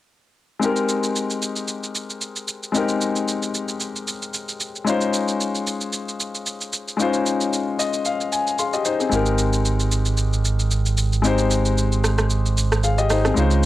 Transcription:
0.60 2.69 G#3 medium
0.60 2.70 C4 medium
0.60 2.71 D#4 medium
0.60 shaker medium
0.64 2.71 G4 medium
0.64 2.72 A#4 medium
0.76 shaker soft
0.89 shaker medium
1.03 shaker medium
1.16 shaker medium
1.30 shaker soft
1.42 shaker medium
1.56 shaker soft
1.68 shaker medium
1.83 shaker soft
1.95 shaker medium
2.10 shaker soft
2.21 shaker medium
2.36 shaker soft
2.48 shaker medium
2.63 shaker soft
2.72 4.82 G#3 medium
2.72 4.82 C4 medium
2.72 4.83 D#4 medium
2.72 4.84 G4 medium
2.72 shaker medium
2.77 4.84 A#4 medium
2.89 shaker soft
3.01 shaker medium
3.16 shaker medium
3.28 shaker medium
3.43 shaker soft
3.55 shaker medium
3.68 shaker medium
3.80 shaker medium
3.96 shaker soft
4.08 shaker medium
4.22 shaker soft
4.34 shaker medium
4.49 shaker medium
4.60 shaker medium
4.76 shaker soft
4.84 6.94 G#3 medium
4.84 6.95 C#4 medium
4.84 6.95 D#4 medium
4.84 shaker medium
4.88 6.96 F4 medium
4.88 6.97 C5 medium
5.01 shaker medium
5.13 shaker medium
5.28 shaker medium
5.40 shaker medium
5.55 shaker soft
5.67 shaker loud
5.81 shaker medium
5.93 shaker medium
6.08 shaker soft
6.20 shaker medium
6.35 shaker soft
6.46 shaker medium
6.61 shaker medium
6.73 shaker medium
6.88 shaker soft
6.97 9.07 G#3 medium
6.97 8.55 C#4 medium
6.97 8.56 D#4 medium
6.97 8.56 F4 medium
6.97 shaker medium
7.02 8.57 C5 medium
7.13 shaker soft
7.26 shaker medium
7.41 shaker medium
7.53 shaker medium
7.79 8.04 D#5 medium
7.79 shaker medium
7.93 shaker medium
8.05 8.30 F5 medium
8.05 shaker medium
8.21 shaker soft
8.32 8.57 G#5 medium
8.32 shaker medium
8.47 shaker soft
8.59 8.73 G#4 soft
8.59 8.73 F5 medium
8.59 9.08 C6 medium
8.59 shaker medium
8.73 8.85 G4 medium
8.73 8.85 D#5 medium
8.73 shaker medium
8.85 8.99 D#4 medium
8.85 8.99 C5 medium
8.85 shaker medium
9.00 9.09 C4 medium
9.00 9.25 G#4 medium
9.00 shaker soft
9.09 13.33 G#1 medium
9.09 11.19 G#3 medium
9.09 11.20 C4 medium
9.09 11.20 D#4 medium
9.09 11.21 G4 medium
9.09 shaker medium
9.15 11.22 A#4 medium
9.26 shaker soft
9.38 shaker medium
9.53 shaker medium
9.65 shaker medium
9.80 shaker soft
9.92 shaker medium
10.05 shaker medium
10.17 shaker medium
10.33 shaker soft
10.45 shaker medium
10.59 shaker soft
10.71 shaker medium
10.86 shaker medium
10.98 shaker medium
11.13 shaker soft
11.22 13.05 G#3 medium
11.22 12.80 C4 medium
11.22 12.81 D#4 medium
11.22 12.81 G4 medium
11.22 shaker medium
11.27 12.82 C5 medium
11.38 shaker medium
11.51 shaker medium
11.65 shaker medium
11.78 shaker medium
11.92 shaker soft
12.04 cross-stick medium
12.04 shaker medium
12.18 cross-stick medium
12.18 shaker medium
12.30 shaker medium
12.46 shaker soft
12.58 shaker loud
12.72 cross-stick medium
12.72 shaker soft
12.84 12.98 G#4 soft
12.84 12.97 F5 medium
12.84 shaker medium
12.98 13.10 G4 medium
12.98 13.10 D#5 medium
12.98 shaker medium
13.10 13.24 D#4 medium
13.10 13.24 C5 medium
13.10 cross-stick medium
13.10 shaker medium
13.25 13.50 C4 medium
13.25 13.50 G#4 medium
13.25 cross-stick medium
13.25 shaker soft
13.34 13.65 C#2 medium
13.34 13.65 G#3 medium
13.34 13.65 C#4 medium
13.34 13.65 D#4 medium
13.34 13.65 F4 medium
13.34 shaker medium
13.39 13.65 C5 medium
13.51 shaker soft

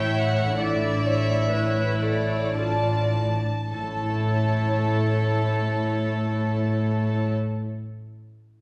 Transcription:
0.00 3.39 A1 soft
0.00 0.41 A2 soft
0.00 3.39 A2 soft
0.00 0.57 C#4 soft
0.00 0.58 E4 soft
0.00 0.59 E4 soft
0.00 0.55 A4 soft
0.00 0.56 C#5 soft
0.00 0.60 E5 soft
0.00 0.19 G5 medium
0.19 0.59 F#5 medium
0.43 3.69 A2 soft
0.47 3.71 D4 soft
0.52 3.73 F4 soft
0.56 2.53 E4 medium
0.56 4.00 A4 soft
0.56 1.02 D5 soft
0.60 1.48 D5 soft
0.60 2.02 E5 medium
1.05 1.51 C#5 soft
1.50 2.01 B4 soft
1.50 2.00 C#5 soft
2.01 2.57 A4 soft
2.01 2.56 C#5 soft
2.01 2.58 D5 medium
2.56 3.42 D4 soft
2.56 3.16 F4 soft
2.56 3.41 D5 soft
2.56 3.70 A5 soft
3.71 7.31 A1 soft
3.71 7.29 A2 soft
3.71 7.63 A2 soft
3.71 7.31 A3 soft
3.71 7.30 E4 soft
3.71 7.30 A4 soft
3.71 7.30 C#5 soft
3.71 7.28 A5 soft
3.80 7.37 A3 soft
3.87 7.44 C#4 soft
3.94 7.51 E4 soft
4.01 7.58 A4 soft
4.08 7.65 E5 soft

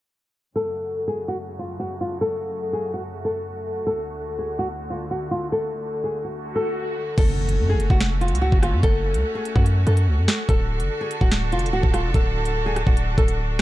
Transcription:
0.56 3.83 F#2 medium
0.56 3.83 C#3 medium
0.56 7.14 A3 medium
0.56 7.14 F#4 medium
0.56 1.04 A4 medium
1.08 1.23 G#4 medium
1.28 1.36 F#4 medium
1.59 1.75 F4 medium
1.80 1.95 F#4 medium
2.01 2.16 F4 medium
2.21 2.70 A4 loud
2.73 2.89 G#4 medium
2.94 3.02 F#4 medium
3.25 3.83 A4 medium
3.87 7.14 D2 medium
3.87 7.14 D3 medium
3.87 4.35 A4 loud
4.39 4.54 G#4 medium
4.59 4.67 F#4 medium
4.90 5.06 F4 medium
5.11 5.27 F#4 medium
5.31 5.47 F4 medium
5.52 6.01 A4 loud
5.52 swell medium
6.04 6.20 G#4 medium
6.24 6.32 F#4 medium
6.56 7.14 A4 medium
7.18 7.61 F#1 loud
7.18 10.45 A3 medium
7.18 10.45 C#4 medium
7.18 13.62 F#4 medium
7.18 7.66 A4 loud
7.18 kick loud
7.18 closed hi-hat medium
7.18 crash loud
7.18 impact medium
7.49 closed hi-hat medium
7.59 7.76 F#2 loud
7.70 7.85 G#4 medium
7.75 7.89 F#1 loud
7.80 closed hi-hat medium
7.90 8.33 F1 loud
7.90 7.98 F#4 medium
7.90 kick medium
8.00 snare loud
8.00 closed hi-hat medium
8.21 8.37 F4 medium
8.21 closed hi-hat soft
8.28 8.51 C#2 loud
8.28 closed hi-hat medium
8.35 closed hi-hat medium
8.42 8.57 F#4 medium
8.52 8.74 F#1 loud
8.52 kick medium
8.63 8.78 F4 medium
8.63 cross-stick loud
8.63 closed hi-hat medium
8.73 8.83 F#2 loud
8.83 9.16 F#1 loud
8.83 9.32 A4 loud
8.83 kick loud
8.83 closed hi-hat medium
9.14 9.24 C#2 loud
9.14 closed hi-hat medium
9.35 9.51 G#4 medium
9.45 closed hi-hat medium
9.56 9.85 F#2 loud
9.56 9.64 F#4 medium
9.56 kick medium
9.66 closed hi-hat medium
9.87 10.09 F#2 loud
9.87 10.45 A4 medium
9.87 closed hi-hat medium
9.97 closed hi-hat medium
10.07 10.19 C#2 loud
10.18 10.28 F#2 loud
10.28 cross-stick loud
10.28 snare loud
10.28 closed hi-hat medium
10.49 10.81 D1 loud
10.49 13.62 D3 medium
10.49 13.62 D4 medium
10.49 13.62 A4 medium
10.49 10.97 A4 loud
10.49 kick loud
10.49 closed hi-hat medium
10.80 10.90 F#1 loud
10.80 closed hi-hat medium
11.01 11.16 G#4 medium
11.11 closed hi-hat medium
11.21 11.54 D1 loud
11.21 11.29 F#4 medium
11.21 kick loud
11.31 snare loud
11.31 closed hi-hat medium
11.52 11.69 F1 loud
11.52 11.68 F4 medium
11.52 closed hi-hat soft
11.59 closed hi-hat medium
11.66 11.82 D1 loud
11.66 closed hi-hat medium
11.73 11.89 F#4 medium
11.83 12.05 D1 loud
11.83 kick medium
11.93 12.09 F4 medium
11.93 cross-stick loud
11.93 closed hi-hat medium
12.04 12.14 F1 loud
12.14 12.84 D1 loud
12.14 12.63 A4 loud
12.14 kick loud
12.14 closed hi-hat medium
12.45 closed hi-hat medium
12.66 12.82 G#4 medium
12.76 cross-stick medium
12.76 closed hi-hat medium
12.87 13.16 D1 loud
12.87 12.95 F#4 medium
12.87 kick loud
12.97 closed hi-hat medium
13.18 13.62 D1 loud
13.18 13.62 A4 medium
13.18 kick loud
13.18 closed hi-hat soft
13.28 closed hi-hat medium

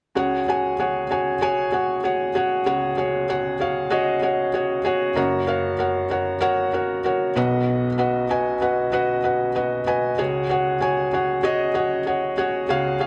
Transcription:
0.15 2.62 C#2 soft
0.15 2.63 C#3 soft
0.15 0.40 F#4 medium
0.15 0.40 G#4 medium
0.15 0.41 C#5 medium
0.15 0.41 F#5 medium
0.48 0.72 F#4 medium
0.48 0.73 G#4 medium
0.48 0.72 C#5 medium
0.48 0.73 G#5 medium
0.79 1.04 F#4 medium
0.79 1.04 G#4 medium
0.79 1.04 C#5 medium
0.79 1.04 F#5 medium
1.10 1.35 F#4 medium
1.10 1.35 G#4 medium
1.10 1.35 C#5 medium
1.10 1.35 G#5 medium
1.41 1.66 F#4 medium
1.41 1.66 G#4 medium
1.41 1.66 C#5 medium
1.41 1.66 G#5 medium
1.72 1.97 F#4 medium
1.72 1.97 G#4 medium
1.72 1.97 C#5 medium
1.72 1.98 F#5 medium
2.04 2.28 F#4 medium
2.04 2.28 G#4 medium
2.04 2.29 C#5 medium
2.04 2.29 F#5 medium
2.35 2.60 F#4 medium
2.35 2.60 G#4 medium
2.35 2.60 C#5 medium
2.35 2.60 F#5 medium
2.66 5.13 C#2 medium
2.66 5.13 C#3 medium
2.66 2.91 F#4 medium
2.66 2.91 G#4 medium
2.66 2.91 C#5 medium
2.66 2.91 F#5 medium
2.97 3.22 F#4 medium
2.97 3.22 G#4 medium
2.97 3.22 C#5 medium
2.97 3.23 F#5 medium
3.29 3.54 F#4 medium
3.29 3.54 G#4 medium
3.29 3.54 C#5 medium
3.29 3.54 F#5 medium
3.60 3.85 F#4 medium
3.60 3.85 G#4 medium
3.60 3.85 C#5 medium
3.60 3.86 F5 medium
3.90 4.16 F#4 medium
3.90 4.16 G#4 medium
3.90 4.16 C#5 medium
3.90 4.16 D#5 medium
4.22 4.47 F#4 medium
4.22 4.47 G#4 medium
4.22 4.48 C#5 medium
4.22 4.48 F#5 medium
4.54 4.79 F#4 medium
4.54 4.79 G#4 medium
4.54 4.79 C#5 medium
4.54 4.79 F#5 medium
4.85 5.10 F#4 medium
4.85 5.10 G#4 medium
4.85 5.10 C#5 medium
4.85 5.10 F#5 medium
5.15 7.32 F#1 medium
5.15 7.32 F#2 medium
5.15 5.41 F#4 medium
5.15 5.41 A#4 medium
5.15 5.41 C#5 medium
5.15 5.42 F#5 medium
5.47 5.72 F#4 medium
5.47 5.72 A#4 medium
5.47 5.73 C#5 medium
5.47 5.73 F5 medium
5.79 6.04 F#4 medium
5.79 6.04 A#4 medium
5.79 6.04 C#5 medium
5.79 6.05 F#5 medium
6.10 6.35 F#4 medium
6.10 6.35 A#4 medium
6.10 6.36 C#5 medium
6.10 6.36 F#5 medium
6.41 6.66 F#4 medium
6.41 6.66 A#4 medium
6.41 6.67 C#5 medium
6.41 6.67 F#5 loud
6.73 6.98 F#4 medium
6.73 6.98 A#4 medium
6.73 6.99 C#5 medium
6.73 6.99 F#5 medium
7.04 7.29 F#4 medium
7.04 7.30 A#4 medium
7.04 7.30 C#5 medium
7.04 7.30 F#5 medium
7.35 9.83 B1 medium
7.35 9.83 B2 medium
7.35 7.86 F#4 medium
7.35 7.86 B4 medium
7.35 7.87 D#5 medium
7.35 7.87 F#5 medium
7.98 8.23 F#4 medium
7.98 8.23 B4 medium
7.98 8.24 D#5 medium
7.98 8.24 F#5 medium
8.29 8.55 F#4 medium
8.29 8.55 B4 medium
8.29 8.55 D#5 medium
8.29 8.55 G#5 medium
8.61 8.86 F#4 medium
8.61 8.86 B4 medium
8.61 8.87 D#5 medium
8.61 8.87 F#5 medium
8.92 9.17 F#4 medium
8.92 9.18 B4 medium
8.92 9.18 D#5 medium
8.92 9.18 F#5 medium
9.24 9.49 F#4 medium
9.24 9.49 B4 medium
9.24 9.49 D#5 medium
9.24 9.49 F#5 medium
9.55 9.80 F#4 medium
9.55 9.80 B4 medium
9.55 9.81 D#5 medium
9.55 9.81 F#5 medium
9.86 10.12 F#4 medium
9.86 10.12 B4 medium
9.86 10.12 D#5 medium
9.86 10.12 G#5 medium
10.18 12.66 C#2 soft
10.18 12.66 C#3 medium
10.18 10.43 F#4 medium
10.18 10.43 G#4 medium
10.18 10.43 C#5 medium
10.18 10.44 F#5 medium
10.49 10.75 F#4 medium
10.49 10.75 G#4 medium
10.49 10.75 C#5 medium
10.49 10.75 F#5 medium
10.80 11.06 F#4 medium
10.80 11.06 G#4 medium
10.80 11.06 C#5 medium
10.80 11.07 G#5 medium
11.13 11.38 F#4 medium
11.13 11.38 G#4 medium
11.13 11.38 C#5 medium
11.13 11.38 F#5 medium
11.43 11.68 F#4 medium
11.43 11.69 G#4 medium
11.43 11.69 C#5 medium
11.43 11.69 D#5 loud
11.74 11.99 F#4 medium
11.74 12.00 G#4 medium
11.74 12.00 C#5 medium
11.74 12.00 F#5 medium
12.06 12.31 F#4 medium
12.06 12.31 G#4 medium
12.06 12.32 C#5 medium
12.06 12.32 F#5 medium
12.37 12.63 F#4 medium
12.37 12.63 G#4 medium
12.37 12.63 C#5 medium
12.37 12.63 F#5 medium
12.69 13.07 C#2 medium
12.69 13.07 C#3 medium
12.69 12.94 F#4 medium
12.69 12.94 G#4 medium
12.69 12.95 C#5 medium
12.69 12.95 F5 medium
13.00 13.07 F#4 medium
13.00 13.07 G#4 medium
13.00 13.07 C#5 medium
13.00 13.07 F5 medium

